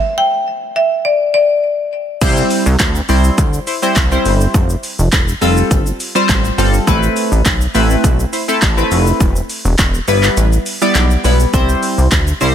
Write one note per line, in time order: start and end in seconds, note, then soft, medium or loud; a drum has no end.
0.00 0.16 E5 loud
0.18 0.78 G5 loud
0.76 1.06 E5 loud
1.05 1.33 D5 medium
1.34 1.88 D5 medium
2.21 2.43 C2 loud
2.21 2.65 G3 loud
2.21 2.66 C4 medium
2.21 2.66 E4 medium
2.21 2.66 C5 loud
2.21 kick loud
2.21 closed hi-hat medium
2.21 crash loud
2.21 shaker medium
2.37 shaker medium
2.50 open hi-hat medium
2.50 shaker medium
2.66 2.76 C2 loud
2.66 shaker medium
2.79 3.01 D2 loud
2.79 kick loud
2.79 clap loud
2.79 closed hi-hat medium
2.79 shaker medium
2.95 shaker medium
3.09 3.30 C2 loud
3.09 3.38 G3 medium
3.09 3.38 C4 medium
3.09 3.38 E4 medium
3.09 3.38 C5 loud
3.09 open hi-hat medium
3.09 shaker medium
3.24 shaker medium
3.38 3.59 D2 loud
3.38 kick loud
3.38 closed hi-hat medium
3.38 shaker medium
3.53 shaker medium
3.67 3.75 E4 loud
3.67 3.75 C5 loud
3.67 open hi-hat medium
3.67 shaker medium
3.82 3.96 G3 medium
3.82 3.96 C4 medium
3.82 3.96 E4 medium
3.82 3.96 C5 loud
3.82 shaker medium
3.96 4.18 C2 loud
3.96 kick loud
3.96 clap loud
3.96 closed hi-hat medium
3.96 shaker medium
4.11 4.54 G3 medium
4.11 4.54 C4 medium
4.11 4.55 E4 medium
4.11 4.55 C5 loud
4.11 shaker medium
4.11 shaker soft
4.25 4.47 G1 medium
4.25 open hi-hat medium
4.25 shaker medium
4.25 shaker soft
4.41 shaker medium
4.54 4.76 F1 loud
4.54 kick loud
4.54 closed hi-hat medium
4.54 shaker medium
4.70 shaker medium
4.70 shaker soft
4.83 open hi-hat medium
4.83 shaker medium
4.99 5.09 F1 medium
4.99 shaker medium
5.12 5.34 E1 loud
5.12 kick loud
5.12 clap loud
5.12 closed hi-hat medium
5.12 shaker medium
5.28 shaker medium
5.41 5.63 F1 medium
5.41 5.78 G3 medium
5.41 5.78 C4 medium
5.41 5.78 F4 medium
5.41 5.78 A4 medium
5.41 open hi-hat medium
5.41 shaker medium
5.57 shaker medium
5.71 5.92 G1 medium
5.71 kick loud
5.71 closed hi-hat medium
5.71 shaker medium
5.86 shaker medium
6.00 open hi-hat medium
6.00 shaker medium
6.15 6.36 G3 loud
6.15 6.37 C4 medium
6.15 6.37 F4 loud
6.15 6.37 C5 loud
6.15 shaker medium
6.29 6.51 A1 loud
6.29 kick loud
6.29 clap loud
6.29 closed hi-hat medium
6.29 shaker medium
6.45 shaker medium
6.45 shaker soft
6.58 6.79 G1 medium
6.58 6.73 G3 medium
6.58 6.74 C4 medium
6.58 6.74 F4 medium
6.58 6.74 A4 loud
6.58 open hi-hat medium
6.58 shaker medium
6.74 shaker medium
6.87 7.09 A1 loud
6.87 7.31 A3 loud
6.87 7.31 C4 medium
6.87 7.31 E4 medium
6.87 7.32 B4 loud
6.87 kick loud
6.87 closed hi-hat medium
6.87 shaker medium
7.03 shaker medium
7.03 shaker soft
7.16 open hi-hat medium
7.16 shaker medium
7.32 7.42 A1 loud
7.32 shaker medium
7.45 7.67 B1 medium
7.45 kick loud
7.45 clap loud
7.45 closed hi-hat medium
7.45 shaker medium
7.61 shaker medium
7.74 7.96 A1 medium
7.74 8.03 A3 medium
7.74 8.04 C4 medium
7.74 8.04 E4 medium
7.74 8.04 B4 loud
7.74 open hi-hat medium
7.74 shaker medium
7.90 shaker medium
8.04 8.25 B1 loud
8.04 kick loud
8.04 closed hi-hat medium
8.04 shaker medium
8.20 shaker medium
8.33 8.41 E4 loud
8.33 8.41 C5 loud
8.33 open hi-hat medium
8.33 shaker medium
8.48 8.62 A3 medium
8.48 8.62 C4 medium
8.48 8.62 E4 medium
8.48 8.62 A4 loud
8.48 shaker medium
8.62 8.84 A1 loud
8.62 kick loud
8.62 clap loud
8.62 closed hi-hat medium
8.62 shaker medium
8.77 9.20 A3 medium
8.77 9.20 C4 medium
8.77 9.20 E4 medium
8.77 9.21 B4 loud
8.77 shaker medium
8.77 shaker soft
8.91 9.13 F1 medium
8.91 open hi-hat medium
8.91 shaker soft
8.91 shaker medium
9.07 shaker medium
9.20 9.42 E1 loud
9.20 kick loud
9.20 closed hi-hat medium
9.20 shaker medium
9.36 shaker medium
9.49 open hi-hat medium
9.49 shaker medium
9.65 9.75 E1 loud
9.65 shaker medium
9.78 10.00 E1 loud
9.78 kick loud
9.78 clap loud
9.78 closed hi-hat medium
9.78 shaker medium
9.94 shaker medium
10.08 10.29 G1 medium
10.08 10.44 G3 medium
10.08 10.44 B3 medium
10.08 10.44 E4 medium
10.08 10.44 B4 loud
10.08 open hi-hat medium
10.08 shaker medium
10.23 clap medium
10.23 shaker medium
10.37 10.58 A1 loud
10.37 closed hi-hat medium
10.37 shaker medium
10.52 shaker medium
10.66 open hi-hat medium
10.66 shaker medium
10.82 11.03 G3 loud
10.82 11.03 B3 medium
10.82 11.03 E4 loud
10.82 11.03 D5 loud
10.82 shaker medium
10.95 11.17 B1 medium
10.95 clap loud
10.95 closed hi-hat medium
10.95 shaker medium
11.11 shaker soft
11.24 11.46 B1 loud
11.24 11.40 G3 medium
11.24 11.40 B3 medium
11.24 11.40 E4 medium
11.24 11.40 B4 loud
11.24 open hi-hat medium
11.24 shaker medium
11.24 shaker soft
11.40 shaker medium
11.53 11.75 C2 loud
11.53 11.98 G3 loud
11.53 11.98 C4 medium
11.53 11.98 E4 medium
11.53 11.98 C5 loud
11.53 kick loud
11.53 closed hi-hat medium
11.53 shaker medium
11.69 shaker medium
11.69 shaker soft
11.83 open hi-hat medium
11.83 shaker medium
11.98 12.08 C2 loud
11.98 shaker medium
12.11 12.33 D2 loud
12.11 kick loud
12.11 clap loud
12.11 closed hi-hat medium
12.11 shaker medium
12.27 shaker medium
12.41 12.55 C2 loud
12.41 12.55 G3 medium
12.41 12.55 C4 medium
12.41 12.55 E4 medium
12.41 12.55 C5 loud
12.41 open hi-hat medium
12.41 shaker medium